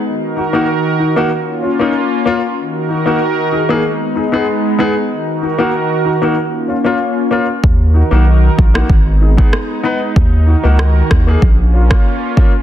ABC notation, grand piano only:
X:1
M:4/4
L:1/16
Q:1/4=95
K:Ebm
V:1 name="Grand piano"
z2 [EG] [B,EG] z2 [EG] [B,EG] z2 [DF] [B,DE] z2 [B,DF] z | z2 [EG] [B,EG] z2 [EA] [B,EA] z2 [EA] [CEA] z2 [CEA] z | z2 [EG] [B,EG] z2 [EG] [B,EG] z2 [DF] [B,DF] z2 [B,DF] z | z2 [EG] [B,EG] z2 [EF] [B,EG] z2 [EA] [CEA] z2 [CEc] z |
z2 [EG] [B,EG] z2 [EG] [B,EA] z2 [DF] [B,DF] z2 [B,DF] z |]